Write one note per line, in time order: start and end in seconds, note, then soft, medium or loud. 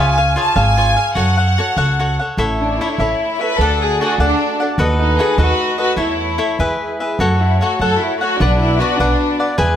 0.00 0.35 C#2 medium
0.00 0.17 F4 medium
0.00 0.18 G#4 medium
0.00 0.17 C#5 medium
0.00 0.16 F5 medium
0.00 0.38 G#5 medium
0.18 0.36 G#4 soft
0.18 0.36 C#5 soft
0.18 0.36 F5 medium
0.36 0.55 F4 medium
0.36 0.55 G#4 medium
0.36 0.54 C#5 medium
0.36 0.55 F5 medium
0.36 0.56 A5 medium
0.56 0.95 G#1 medium
0.56 0.76 F4 medium
0.56 0.76 G#4 soft
0.56 0.77 C#5 medium
0.56 0.77 F5 medium
0.56 1.17 G#5 medium
0.77 0.96 F4 soft
0.77 0.97 G#4 medium
0.77 0.97 C#5 medium
0.77 0.95 F5 medium
0.96 1.16 G#4 soft
0.96 1.15 C#5 soft
0.96 1.16 F5 soft
1.15 1.55 F#2 medium
1.15 1.37 F#4 medium
1.15 1.38 A4 medium
1.15 1.38 C#5 medium
1.15 1.36 F#5 medium
1.15 2.15 F#5 medium
1.37 1.58 A4 soft
1.37 1.58 C#5 soft
1.37 1.57 F#5 soft
1.58 1.77 F#4 medium
1.58 1.77 A4 medium
1.58 1.76 C#5 medium
1.58 1.76 F#5 medium
1.77 2.17 C#2 medium
1.77 1.98 F#4 soft
1.77 1.99 A4 medium
1.77 1.99 C#5 medium
1.77 1.99 F#5 medium
1.99 2.19 F#4 soft
1.99 2.19 A4 soft
1.99 2.19 C#5 soft
1.99 2.18 F#5 medium
2.19 2.37 A4 soft
2.19 2.38 C#5 soft
2.19 2.39 F#5 soft
2.37 2.78 A1 medium
2.37 5.94 A3 medium
2.37 3.59 E4 medium
2.37 2.80 E4 medium
2.37 2.81 A4 medium
2.37 3.58 C#5 medium
2.37 2.80 C#5 medium
2.37 2.81 E5 medium
2.60 2.78 D4 medium
2.80 2.87 E4 medium
2.80 3.00 E4 medium
2.80 3.00 A4 medium
2.80 2.99 C#5 medium
2.80 2.98 E5 medium
2.88 2.94 D4 medium
2.92 3.40 E4 medium
2.98 3.13 A1 medium
2.98 3.41 E4 soft
2.98 3.43 A4 medium
2.98 3.41 C#5 soft
2.98 3.40 E5 soft
3.41 3.60 A4 soft
3.41 3.60 B4 loud
3.41 3.61 C#5 soft
3.41 3.60 E5 soft
3.58 3.98 D2 medium
3.58 4.00 D4 medium
3.58 4.77 F#4 medium
3.58 3.81 A4 medium
3.58 4.02 A4 medium
3.58 4.77 D5 medium
3.58 4.01 D5 medium
3.58 4.02 F#5 medium
3.82 4.01 G#4 medium
4.01 4.20 D4 medium
4.01 4.06 F#4 medium
4.01 4.10 G#4 medium
4.01 4.19 A4 medium
4.01 4.19 D5 medium
4.01 4.19 F#5 medium
4.10 4.20 F#4 medium
4.18 4.32 D2 medium
4.18 4.62 D4 medium
4.18 4.60 D4 soft
4.18 4.62 A4 medium
4.18 4.60 D5 medium
4.18 4.59 F#5 medium
4.60 4.78 A4 soft
4.60 4.79 D5 soft
4.60 4.79 F#5 soft
4.78 5.17 D#2 medium
4.78 5.97 D#4 medium
4.78 5.18 F#4 medium
4.78 5.18 A4 medium
4.78 5.19 B4 medium
4.78 5.97 B4 medium
4.78 5.19 D#5 medium
4.99 5.17 D#4 medium
5.19 5.38 F#4 medium
5.19 5.39 G#4 medium
5.19 5.38 A4 medium
5.19 5.38 B4 medium
5.19 5.37 D#5 medium
5.38 5.52 D#2 medium
5.38 5.79 F#4 medium
5.38 5.77 F#4 medium
5.38 5.78 A4 medium
5.38 5.78 B4 medium
5.38 5.77 D#5 medium
5.78 5.98 F#4 medium
5.78 5.96 A4 soft
5.78 5.97 B4 soft
5.78 5.97 D#5 soft
5.96 6.36 E2 medium
5.96 6.58 A3 medium
5.96 6.37 E4 medium
5.96 7.18 E4 medium
5.96 6.56 E4 medium
5.96 6.37 A4 medium
5.96 6.38 C#5 medium
5.96 6.58 C#5 medium
5.96 6.38 E5 medium
6.38 6.58 E4 medium
6.38 6.58 A4 medium
6.38 6.59 C#5 medium
6.38 6.59 E5 medium
6.58 6.73 E2 medium
6.58 7.19 G#3 soft
6.58 7.01 E4 medium
6.58 7.00 G#4 medium
6.58 7.19 B4 medium
6.58 6.99 B4 medium
6.58 6.99 E5 medium
7.00 7.20 G#4 soft
7.00 7.20 B4 soft
7.00 7.20 E5 soft
7.19 7.58 F#2 medium
7.19 8.39 A3 medium
7.19 9.56 F#4 medium
7.19 7.60 F#4 medium
7.19 7.61 A4 medium
7.19 8.39 C#5 medium
7.19 7.61 C#5 medium
7.19 7.62 F#5 medium
7.36 7.41 F#4 soft
7.41 7.61 E4 medium
7.61 7.80 F#4 medium
7.61 7.79 F#4 medium
7.61 7.80 A4 medium
7.61 7.80 C#5 medium
7.61 7.80 F#5 medium
7.79 7.94 F#2 medium
7.79 8.22 F#4 soft
7.79 8.00 A4 medium
7.79 8.21 A4 medium
7.79 8.21 C#5 medium
7.79 8.20 F#5 medium
8.01 8.21 E4 medium
8.19 8.38 F#4 medium
8.19 8.41 A4 soft
8.19 8.41 C#5 soft
8.19 8.40 F#5 soft
8.38 8.79 B1 loud
8.38 9.56 B3 medium
8.38 8.61 D4 medium
8.38 8.79 D4 medium
8.38 8.81 B4 medium
8.38 9.57 D5 medium
8.38 8.81 D5 medium
8.38 8.80 F#5 medium
8.60 8.78 E4 medium
8.79 8.99 D4 medium
8.79 8.99 F#4 medium
8.79 8.99 B4 medium
8.79 8.99 D5 medium
8.79 8.99 F#5 medium
8.98 9.13 B1 medium
8.98 9.44 D4 medium
8.98 9.40 D4 soft
8.98 9.41 B4 soft
8.98 9.38 D5 medium
8.98 9.39 F#5 medium
9.40 9.57 B4 soft
9.40 9.58 D5 soft
9.40 9.58 F#5 soft
9.58 9.76 E2 medium
9.58 9.76 G#3 medium
9.58 9.76 E4 medium
9.58 9.76 G#4 medium
9.58 9.76 B4 medium
9.58 9.76 E5 medium
9.58 9.76 G#5 medium